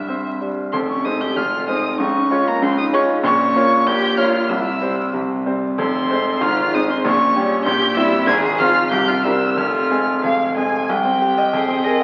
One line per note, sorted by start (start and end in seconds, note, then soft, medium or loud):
0.00 0.70 C2 medium
0.00 0.28 G2 soft
0.00 0.41 E4 medium
0.00 0.39 E5 medium
0.09 0.38 C4 soft
0.09 0.38 C5 soft
0.41 0.73 G3 soft
0.72 1.04 F1 medium
0.72 1.04 F2 medium
0.72 0.79 C4 medium
0.72 0.79 C6 medium
0.89 1.06 C#4 medium
0.89 1.06 C#6 medium
1.05 1.33 G#3 soft
1.05 1.34 C4 soft
1.05 1.23 D#4 medium
1.05 1.34 C5 medium
1.05 1.22 D#6 medium
1.21 1.39 G4 medium
1.21 1.38 G6 medium
1.36 1.67 F1 medium
1.36 1.67 F2 medium
1.36 1.69 F4 medium
1.36 1.68 F6 medium
1.68 1.97 G#3 soft
1.68 1.97 C4 medium
1.68 2.02 D#4 medium
1.68 1.97 C5 medium
1.68 1.99 D#6 medium
1.99 2.30 C#2 medium
1.99 2.30 C#3 medium
1.99 2.49 C#4 medium
1.99 2.49 C#6 medium
2.31 2.59 G#3 medium
2.31 2.59 F4 medium
2.31 2.59 C#5 medium
2.47 2.61 A#3 medium
2.47 2.64 A#5 medium
2.62 2.92 C#2 medium
2.62 2.92 C#3 medium
2.62 2.77 C4 medium
2.62 2.77 C6 medium
2.78 2.94 D#4 medium
2.78 2.84 D#6 loud
2.92 3.21 G#3 medium
2.92 3.23 C#4 medium
2.92 3.21 F4 medium
2.92 3.21 C#5 medium
2.92 3.02 C#6 loud
3.23 3.54 A#1 medium
3.23 3.54 A#2 medium
3.23 3.85 C#4 loud
3.23 3.88 C#6 loud
3.55 3.83 A#3 medium
3.55 3.84 F4 medium
3.55 3.84 C#5 medium
3.87 4.17 A#1 medium
3.87 4.17 A#2 medium
3.87 4.17 G4 loud
3.87 4.19 G6 loud
4.17 4.46 A#3 medium
4.17 4.46 F4 medium
4.17 4.51 F4 medium
4.17 4.47 C#5 medium
4.17 4.50 F6 loud
4.49 4.81 C2 medium
4.49 4.81 C3 medium
4.49 5.15 E4 medium
4.49 5.14 E6 loud
4.81 5.11 G3 medium
4.81 5.11 C4 medium
4.81 5.11 C5 medium
5.14 5.46 C2 medium
5.14 5.46 C3 medium
5.46 5.75 G3 soft
5.46 5.75 C4 soft
5.46 5.76 C5 soft
5.78 6.09 F1 medium
5.78 6.09 F2 medium
5.78 6.44 C4 medium
5.78 6.44 C6 loud
6.10 6.39 G#3 medium
6.10 6.39 C4 medium
6.10 6.39 C5 medium
6.41 6.72 G#1 medium
6.41 6.72 G#2 medium
6.41 6.76 F4 loud
6.41 6.76 F6 loud
6.73 7.01 G#3 medium
6.73 7.02 C4 medium
6.73 6.92 D#4 medium
6.73 7.02 C5 medium
6.73 6.90 D#6 loud
6.90 7.05 C4 medium
6.90 6.96 C6 loud
7.04 7.34 A#1 medium
7.04 7.34 A#2 medium
7.04 7.67 C#4 loud
7.04 7.64 C#6 loud
7.36 7.63 G3 medium
7.36 7.63 C#4 medium
7.36 7.63 G4 medium
7.65 7.96 A#1 medium
7.65 7.96 A#2 medium
7.65 7.98 G4 loud
7.65 7.96 G6 loud
7.96 8.25 G3 medium
7.96 8.25 C4 medium
7.96 8.29 E4 loud
7.96 8.25 E4 medium
7.96 8.26 E6 loud
8.27 8.58 G#1 medium
8.27 8.58 G#2 loud
8.27 8.61 G#4 loud
8.27 8.35 G#6 loud
8.58 8.89 F3 medium
8.58 8.89 C4 medium
8.58 8.89 F4 medium
8.58 8.91 F4 loud
8.58 8.90 F6 loud
8.91 9.23 C2 medium
8.91 9.23 C3 medium
8.91 8.98 G4 loud
8.91 9.09 G6 loud
9.08 9.14 F4 medium
9.08 9.25 F6 loud
9.24 9.54 G3 medium
9.24 9.54 C4 medium
9.24 9.33 E4 medium
9.24 9.55 A#4 medium
9.24 9.59 E6 loud
9.57 9.89 F1 medium
9.57 9.89 F2 medium
9.57 10.22 F4 medium
9.57 10.23 F6 loud
9.90 10.20 G#3 medium
9.90 10.20 C4 medium
9.90 10.21 G#4 medium
10.23 10.55 F1 medium
10.23 10.55 F2 medium
10.23 10.54 F5 medium
10.57 10.86 G#3 medium
10.57 10.86 C4 medium
10.57 10.86 G#4 medium
10.57 10.91 G#5 medium
10.89 11.51 C2 medium
10.89 11.86 G5 loud
11.05 11.31 C4 medium
11.22 11.47 G4 medium
11.38 11.53 D#5 medium
11.53 12.04 F2 medium
11.53 11.83 G#4 medium
11.68 11.94 C4 medium
11.84 12.04 G#4 medium
11.84 11.94 A#4 medium
11.84 12.04 D#5 loud
12.01 12.04 F5 medium